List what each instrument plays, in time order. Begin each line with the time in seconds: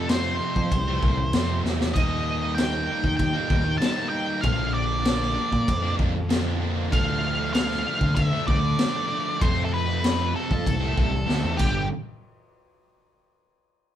Already playing: picked electric bass F2, distorted electric guitar C4
0.08 distorted electric guitar F2 C3 F3 A3 C4, lead electric guitar C5, snare, crash
0.40 distorted electric guitar C3 F3 A3 C4
0.56 picked electric bass F3, muted distorted electric guitar stroke, kick
0.71 picked electric bass C2, kick, crash
0.88 distorted electric guitar F3 A3 C4
1.03 picked electric bass C2, distorted electric guitar C3 F3 A3 C4, kick
1.19 muted distorted electric guitar stroke
1.33 picked electric bass F2, distorted electric guitar F2 C3 F3 A3 C4, snare, crash
1.49 distorted electric guitar F3 A3 C4
1.64 picked electric bass E2, distorted electric guitar C3 F3 A3 C4, snare
1.81 snare
1.94 picked electric bass D#2, distorted electric guitar D#3, lead electric guitar D#5, kick, crash
1.98 distorted electric guitar G3 A#3 D#4
2.42 distorted electric guitar G3 A#3 D#4
2.55 distorted electric guitar D#3 G3, lead electric guitar G5, snare, crash
2.59 distorted electric guitar A#3 D#4
2.87 distorted electric guitar D#3 G3 A#3 D#4
3.03 picked electric bass D#2, muted distorted electric guitar stroke, kick
3.17 picked electric bass D#2, lead electric guitar G5, kick, crash
3.33 distorted electric guitar G3 A#3 D#4
3.49 picked electric bass D#2, distorted electric guitar D#3 G3 A#3 D#4, kick
3.64 muted distorted electric guitar stroke
3.78 distorted electric guitar D#3 G3 A#3, lead electric guitar A5, crash
3.82 distorted electric guitar D#4, snare
3.96 distorted electric guitar G3 A#3 D#4
4.09 distorted electric guitar D#3 G3 A#3 D#4, lead electric guitar G5
4.41 picked electric bass A#1, distorted electric guitar A#2 D3 F3 A#3, lead electric guitar F5, kick, crash
4.45 distorted electric guitar D4
4.74 lead electric guitar D5
4.89 distorted electric guitar F3 A#3 D4
5.04 distorted electric guitar A#2 D3 F3 A#3 D4, snare, crash
5.22 snare
5.35 distorted electric guitar D3 F3 A#3 D4
5.51 picked electric bass A#2, muted distorted electric guitar stroke, kick
5.68 picked electric bass F2, kick, crash
5.82 distorted electric guitar F3 A#3 D4
5.97 picked electric bass F2, distorted electric guitar D3 F3 A#3 D4, kick
6.14 muted distorted electric guitar stroke
6.29 distorted electric guitar A#2 D3 F3 A#3 D4, snare, crash
6.45 distorted electric guitar F3 A#3 D4
6.59 distorted electric guitar D3 F3 A#3 D4
6.92 picked electric bass D2, distorted electric guitar D3 F3 A3 D4, lead electric guitar F5, kick, crash
7.38 distorted electric guitar F3 A3 D4
7.53 distorted electric guitar D3 F3 A3 D4, lead electric guitar F5, snare, crash
7.71 snare
7.84 distorted electric guitar D3 F3 A3 D4
8.00 picked electric bass D2, muted distorted electric guitar stroke, kick
8.15 picked electric bass D2, lead electric guitar E5, kick, crash
8.31 distorted electric guitar F3 A3 D4
8.46 picked electric bass D2, distorted electric guitar D3 F3 A3 D4, lead electric guitar D5, kick
8.63 muted distorted electric guitar stroke
8.78 distorted electric guitar D3 F3 A3 D4, snare, crash
8.93 distorted electric guitar F3 A3 D4
9.09 distorted electric guitar D3 F3 A3 D4
9.39 distorted electric guitar F2 C3 F3 A3 C4, picked electric bass F2, lead electric guitar C5, kick, crash
9.65 lead electric guitar A4
9.74 lead electric guitar B4
9.86 distorted electric guitar F3 A3 C4
10.03 distorted electric guitar F2 C3 F3 A3 C4, snare, crash
10.33 distorted electric guitar C3 F3 A3 C4, lead electric guitar A4
10.50 picked electric bass F3, muted distorted electric guitar stroke, kick
10.66 picked electric bass C2, kick, crash
10.80 distorted electric guitar F3 A3 C4
10.96 picked electric bass C2, distorted electric guitar C3 F3 A3 C4, kick
11.12 muted distorted electric guitar stroke
11.26 picked electric bass D2, distorted electric guitar F2 C3 F3 A3 C4, snare
11.42 picked electric bass E2, distorted electric guitar F3 A3 C4
11.57 picked electric bass G1, distorted electric guitar G2 D3 G3, lead electric guitar G4, kick, crash